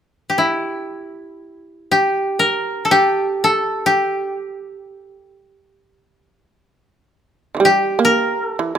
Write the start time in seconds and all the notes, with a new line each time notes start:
0.30 G4
0.38 E4
1.91 G4
2.39 A#4
2.85 A4
2.91 G4
3.44 A4
3.86 G4
7.55 D3 E3
7.60 G3
7.65 G4
7.99 A#3
8.05 A#4
8.48 A4
8.59 E3
8.75 E3